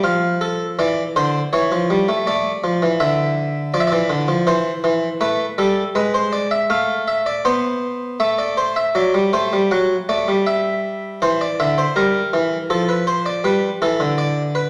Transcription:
0.04 F3 F5
0.41 A4
0.79 E3 D5
1.16 D3 C5
1.53 E3 C#5
1.72 F3
1.90 G3
2.09 A3
2.27 A3 D5
2.64 F3
2.82 E3
3.00 D3 E5
3.74 F3 D5
3.80 E5
3.87 D5
3.92 E3
4.10 D3
4.28 F3
4.47 E3 C5
4.84 E3
5.21 A3 B4
5.58 G3 A4
5.95 G#3 B4
6.14 C5
6.33 D5
6.51 E5
6.70 A3 F5
7.08 E5
7.26 D5
7.45 B3 C5
8.20 A3 E5
8.38 D5
8.57 C5
8.76 E5
8.95 F#3 D5
9.14 G3
9.33 A3 C5
9.53 G3
9.71 F#3 F#5
10.09 A3 D5
10.28 G3
10.47 E5
11.22 E3 C5
11.41 D5
11.60 D3 E5
11.78 C5
11.96 G3 A#4
12.33 E3
12.70 F3 A4
12.89 B4
13.07 C5
13.26 D5
13.44 G3 B4
13.82 E3 A4
14.00 D3
14.18 D5
14.55 B4

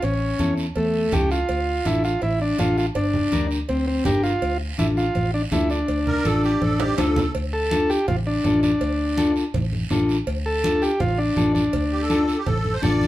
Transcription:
0.02 A1 C#4, cowbell, long guiro
0.39 E2 C#4 E4 A4, cowbell, high conga, short guiro
0.57 short guiro
0.76 E2 A3, cowbell, long guiro
1.12 C#2 C#4 E4 G4 A4, cowbell, high conga, low conga, short guiro
1.31 F4, short guiro
1.49 D2, cowbell, long guiro
1.85 A1 D4 E4 F4 A4, cowbell, high conga, short guiro
2.04 F4, short guiro
2.22 A1 E4, cowbell, long guiro
2.42 D4
2.58 A1 D4 F4 A4, cowbell, high conga, low timbale, short guiro
2.78 F4, short guiro
2.95 G1 D4, cowbell, long guiro
3.14 low conga
3.32 D2 D4 G4 A#4, cowbell, high conga, short guiro
3.51 short guiro
3.69 D2 C4, cowbell, long guiro
3.88 C4
4.05 G1 D4 G4 A#4, cowbell, high conga, low conga, low timbale, short guiro
4.24 F4, short guiro
4.42 D2, cowbell, long guiro
4.78 A1 D4 E4 F4 A4, cowbell, high conga, short guiro
4.97 F4, short guiro
5.15 A1, cowbell, high conga, long guiro
5.34 D4
5.51 D2 D4 E4 F4 A4, cowbell, high conga, low timbale, short guiro
5.70 D4, short guiro
5.88 D2, cowbell, long guiro
6.07 A#4, low conga
6.24 A1 D4 F4 A4, cowbell, high conga, short guiro
6.43 G4, short guiro
6.61 A1 A4, cowbell, high conga, long guiro
6.80 G4, high conga, high timbale
6.98 D2 D4 F4 A4, cowbell, high conga, high timbale, short guiro
7.16 low conga, low timbale, short guiro
7.35 D2, cowbell, high conga, long guiro
7.53 A4
7.71 D4 F4 A4, high conga, short guiro
7.90 G4, short guiro
8.08 A1 F4, cowbell, high conga, low conga, long guiro
8.27 D4
8.44 A1 D4 F4 A4, high conga, low timbale, short guiro
8.63 D4, high conga, short guiro
8.81 D2, cowbell, high conga, long guiro
9.17 D4 F4 A4, high conga, short guiro
9.36 short guiro
9.54 A1, cowbell, high conga, low conga, long guiro
9.73 high conga
9.90 A1 D4 F4 A4, high conga, low timbale, short guiro
10.09 short guiro
10.27 D2, cowbell, high conga, long guiro
10.46 A4
10.64 D4 F4 A4, high conga, short guiro
10.82 G4, short guiro
11.00 A1 F4, cowbell, high conga, low conga, long guiro
11.18 D4
11.36 A1 D4 F4 A4, high conga, low timbale, short guiro
11.55 D4, high conga, short guiro
11.73 D2, cowbell, high conga, low conga, long guiro
11.92 G4
12.02 A4
12.09 D4 F4 A4, high conga, short guiro
12.28 short guiro
12.38 G4
12.46 A1 A4, cowbell, high conga, low conga, long guiro
12.65 high conga
12.74 C5
12.82 A1 D4 F4 A4 D5, high conga, low conga, low timbale, short guiro
13.01 high conga, short guiro

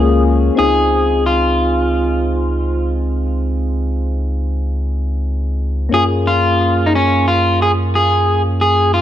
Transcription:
Already playing: C#2 A#3 C#4 F4 G#4
0.55 C4 D#4 G#4
0.59 C#2 F4 G#4
1.26 F4
5.89 F#2 A#3 C#4
5.94 F4 G#4
6.27 F4
6.86 D#4
6.95 C#4
7.28 F4
7.62 G#4
7.95 G#4
8.61 G#4
8.94 F4

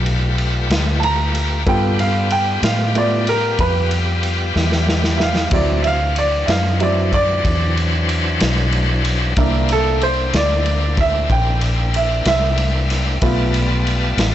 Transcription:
Already playing: B1 A3 F4 G4 B4
0.06 ride
0.38 ride
0.70 D2, snare, ride
1.00 A5, ride
1.04 A#5
1.35 ride
1.66 G2 G3 B3 F4 G4 A4 G5, kick, ride
1.99 F5, ride
2.30 G5, ride
2.63 A2 F5, snare, ride
2.95 A3 B3 F4 D5, ride
3.27 A#4, ride
3.59 F2 B4, kick, ride
3.91 ride
4.23 ride
4.56 E2, snare
4.72 snare
4.89 snare
5.04 snare
5.18 E5, snare
5.22 F5
5.36 snare
5.51 D2 E3 F#3 C4 D4 E4 C5 D5, kick, ride, splash
5.83 E5, ride
5.87 F5
6.16 D5, ride
6.46 F#2 E5, snare, ride
6.50 F5
6.80 F#3 C4 E4 D5, ride
7.13 D5, kick, snare, ride
7.45 E2, kick, ride
7.77 ride
8.09 ride
8.40 B1, snare, ride
8.72 ride
9.05 ride
9.37 C2 A#3 D4 E4 C5, kick, ride
9.69 A4, ride
10.01 C5, ride
10.33 D2 D5, snare, ride
10.66 ride
10.97 E5, kick, snare, ride
11.30 A#1 G5, kick, ride
11.61 ride
11.94 E5, ride
12.25 C2 E5, snare, ride
12.58 ride
12.90 snare, ride
13.22 B1 G3 A3 B3 F4 A5, kick, ride
13.54 ride
13.87 ride
14.17 A1, snare, ride

